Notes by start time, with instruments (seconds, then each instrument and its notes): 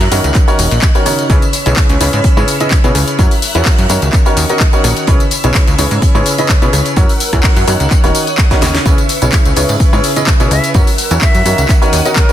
Already playing: string machine E5 A#5 F#6
0.01 analog synth bass F#2, closed hi-hat, tambourine
0.12 analog synth bass F#2, upright piano D#3 C#4 D#4 F#4 A#4 C#5, closed hi-hat, open hi-hat, tambourine
0.24 analog synth bass C#2, closed hi-hat, tambourine
0.35 string machine D#5 C#6 F#6, kick, clap, closed hi-hat, tambourine
0.48 upright piano D#3 C#4 D#4 F#4 A#4 C#5, closed hi-hat, tambourine
0.59 analog synth bass D#1, closed hi-hat, open hi-hat, tambourine
0.71 analog synth bass A#1, closed hi-hat, tambourine
0.82 kick, snare, clap, closed hi-hat, tambourine
0.95 upright piano D#3 C#4 D#4 F#4 A#4 C#5, closed hi-hat, tambourine
1.06 upright piano C#3 C#4 D#4 F#4 A#4 C#5, cross-stick, closed hi-hat, open hi-hat, tambourine
1.19 closed hi-hat, tambourine
1.30 analog synth bass C#2, upright piano C#3 C#4 E4 G#4 B4 C#5, string machine C#5 B5 E6, kick, closed hi-hat, tambourine
1.42 closed hi-hat, tambourine
1.53 snare, closed hi-hat, open hi-hat, tambourine
1.66 analog synth bass B1, upright piano C#3 C#4 E4 G#4 B4 C#5, closed hi-hat, tambourine
1.76 kick, snare, clap, closed hi-hat, tambourine
1.89 analog synth bass C#2, closed hi-hat, tambourine
2.01 analog synth bass C#2, upright piano C#3 C#4 E4 G#4 B4 C#5, closed hi-hat, open hi-hat, tambourine
2.13 analog synth bass G#2, closed hi-hat, tambourine
2.24 kick, closed hi-hat, tambourine
2.37 analog synth bass G#2, upright piano C#3 C#4 E4 G#4 B4 C#5, tambourine
2.48 closed hi-hat, open hi-hat, tambourine
2.60 upright piano C#3 C#4 E4 G#4 B4 D#5, closed hi-hat, tambourine
2.71 kick, snare, clap, closed hi-hat, tambourine
2.84 analog synth bass B2, upright piano C#3 C#4 E4 G#4 B4 C#5, closed hi-hat, tambourine
2.95 analog synth bass C#2, cross-stick, closed hi-hat, open hi-hat, tambourine
3.08 closed hi-hat, tambourine
3.19 analog synth bass F#2, upright piano F#3 C#4 E4 F#4 A#4 C#5, string machine E5 A#5 F#6, kick, closed hi-hat, tambourine
3.31 open hi-hat, tambourine
3.42 closed hi-hat, open hi-hat, tambourine
3.55 analog synth bass E2, upright piano F#3 C#4 E4 F#4 A#4 C#5, closed hi-hat, tambourine
3.65 kick, snare, clap, open hi-hat, tambourine
3.79 analog synth bass F#2, closed hi-hat, tambourine
3.89 analog synth bass F#2, upright piano D#3 C#4 D#4 F#4 A#4 C#5, closed hi-hat, open hi-hat, tambourine
4.02 analog synth bass C#2, closed hi-hat, tambourine
4.13 string machine D#5 C#6 F#6, kick, clap, closed hi-hat, tambourine
4.26 upright piano D#3 C#4 D#4 F#4 A#4 C#5, closed hi-hat, tambourine
4.37 analog synth bass D#2, closed hi-hat, open hi-hat, tambourine
4.49 upright piano D#3 C#4 D#4 F#4 A#4 D#5, closed hi-hat, tambourine
4.60 kick, snare, clap, closed hi-hat, tambourine
4.73 upright piano D#3 C#4 D#4 F#4 A#4 C#5, closed hi-hat, tambourine
4.84 analog synth bass A#1, cross-stick, closed hi-hat, open hi-hat, tambourine
4.97 closed hi-hat, tambourine
5.07 analog synth bass C#2, upright piano C#3 C#4 E4 G#4 B4 C#5, string machine C#5 B5 E6, kick, closed hi-hat, tambourine
5.20 closed hi-hat, tambourine
5.31 snare, closed hi-hat, open hi-hat, tambourine
5.44 analog synth bass B1, upright piano C#3 C#4 E4 G#4 B4 C#5, closed hi-hat, tambourine
5.54 kick, snare, clap, closed hi-hat, tambourine
5.67 analog synth bass C#2, closed hi-hat, tambourine
5.78 analog synth bass C#2, upright piano C#3 C#4 E4 G#4 B4 C#5, closed hi-hat, open hi-hat, tambourine
5.91 analog synth bass G#2, closed hi-hat, tambourine
6.02 kick, closed hi-hat, tambourine
6.15 analog synth bass G#2, upright piano C#3 C#4 E4 G#4 B4 C#5, tambourine
6.26 closed hi-hat, open hi-hat, tambourine
6.38 upright piano C#3 C#4 E4 G#4 B4 D#5, closed hi-hat, tambourine
6.49 kick, snare, clap, closed hi-hat, tambourine
6.62 analog synth bass B2, upright piano C#3 C#4 E4 G#4 B4 C#5, closed hi-hat, tambourine
6.73 analog synth bass C#2, cross-stick, closed hi-hat, open hi-hat, tambourine
6.85 closed hi-hat, tambourine
6.96 analog synth bass F#2, upright piano F#3 C#4 E4 F#4 A#4 C#5, string machine A#4 F#5, kick, closed hi-hat, tambourine
7.09 open hi-hat, tambourine
7.20 closed hi-hat, open hi-hat, tambourine
7.33 analog synth bass E2, upright piano F#3 C#4 E4 F#4 A#4 C#5, kick, cross-stick, closed hi-hat, tambourine
7.43 kick, snare, clap, open hi-hat, tambourine
7.57 analog synth bass F#2, closed hi-hat, tambourine
7.67 analog synth bass F#2, upright piano D#3 C#4 D#4 F#4 A#4 C#5, closed hi-hat, open hi-hat, tambourine
7.80 analog synth bass C#2, closed hi-hat, tambourine
7.91 string machine C#5 D#6, kick, clap, closed hi-hat, tambourine
8.04 analog synth bass D#1, upright piano D#3 C#4 D#4 F#4 A#4 C#5, closed hi-hat, tambourine
8.15 closed hi-hat, open hi-hat, tambourine
8.27 closed hi-hat, tambourine
8.38 kick, snare, clap, closed hi-hat, tambourine
8.51 upright piano D#3 C#4 D#4 F#4 A#4 C#5, kick, snare, closed hi-hat, tambourine
8.62 analog synth bass D#2, upright piano C#3 C#4 D#4 F#4 A#4 C#5, snare, closed hi-hat, open hi-hat, tambourine
8.75 snare, closed hi-hat, tambourine
8.86 analog synth bass C#2, upright piano C#3 C#4 E4 G#4 B4 C#5, string machine B4 E5 C#6, kick, closed hi-hat, tambourine
8.98 closed hi-hat, tambourine
9.09 snare, closed hi-hat, open hi-hat, tambourine
9.22 analog synth bass B1, upright piano C#3 C#4 E4 G#4 B4 C#5, closed hi-hat, tambourine
9.32 kick, snare, clap, closed hi-hat, tambourine
9.45 analog synth bass C#2, closed hi-hat, tambourine
9.56 analog synth bass C#2, upright piano C#3 C#4 E4 G#4 B4 C#5, closed hi-hat, open hi-hat, tambourine
9.69 analog synth bass G#2, closed hi-hat, tambourine
9.80 kick, closed hi-hat, tambourine
9.93 analog synth bass G#2, upright piano C#3 C#4 E4 G#4 B4 C#5, tambourine
10.04 closed hi-hat, open hi-hat, tambourine
10.16 upright piano C#3 C#4 E4 G#4 B4 D#5, closed hi-hat, tambourine
10.27 kick, snare, clap, closed hi-hat, tambourine
10.40 analog synth bass B2, upright piano C#3 C#4 E4 G#4 B4 C#5, closed hi-hat, tambourine
10.51 analog synth bass C#2, flute E5, cross-stick, closed hi-hat, open hi-hat, tambourine
10.63 closed hi-hat, tambourine
10.74 analog synth bass F#2, upright piano F#3 C#4 E4 F#4 A#4 C#5, string machine A#4 F#5 E6, kick, closed hi-hat, tambourine
10.87 open hi-hat, tambourine
10.98 closed hi-hat, open hi-hat, tambourine
11.11 analog synth bass E2, upright piano F#3 C#4 E4 F#4 A#4 C#5, closed hi-hat, tambourine
11.21 flute E5, kick, snare, clap, open hi-hat, tambourine
11.35 analog synth bass F#2, closed hi-hat, tambourine
11.46 analog synth bass F#2, upright piano D#3 C#4 D#4 F#4 A#4 C#5, closed hi-hat, open hi-hat, tambourine
11.58 analog synth bass C#2, closed hi-hat, tambourine
11.69 string machine C#5 F#5 D#6, kick, clap, closed hi-hat, tambourine
11.82 upright piano D#3 C#4 D#4 F#4 A#4 C#5, closed hi-hat, tambourine
11.93 analog synth bass D#2, closed hi-hat, open hi-hat, tambourine
12.05 upright piano D#3 C#4 D#4 F#4 A#4 D#5, closed hi-hat, tambourine
12.16 flute A#4, kick, snare, clap, closed hi-hat, tambourine
12.29 upright piano D#3 C#4 D#4 F#4 A#4 C#5, closed hi-hat, tambourine